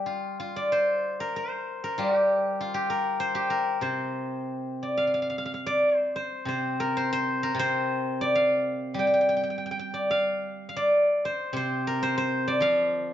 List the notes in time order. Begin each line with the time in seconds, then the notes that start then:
Already playing: G3 G4 A#4 C5
0.06 F4
0.40 F4
0.56 D5
0.72 C5
1.20 A#4
1.36 C5
1.84 A#4
1.98 G3 F4
2.16 G4
2.61 F4
2.74 G4
2.90 A#4
3.20 C5
3.35 G4
3.50 A#4
3.81 C3 C5
4.83 D5
4.97 F5
5.07 F5
5.14 F5
5.22 F5
5.30 F5
5.38 F5
5.46 F5
5.54 F5
5.66 D5
5.95 C5
6.16 C5
6.45 C3 C5
6.80 A#4
6.97 C5
7.13 C5
7.43 A#4
7.55 C3
7.59 C5
8.21 D5
8.35 F5
8.94 G3
8.99 G5
9.07 G5
9.14 G5
9.21 G5
9.29 G5
9.37 G5
9.43 G5
9.50 G5
9.58 G5
9.66 G5
9.71 G5
9.79 G5
9.94 D5
10.11 F5
10.69 F5
10.77 D5
11.25 C5
11.53 C3 C5
11.87 A#4
12.03 C5
12.18 C5
12.48 D5
12.60 F3 F5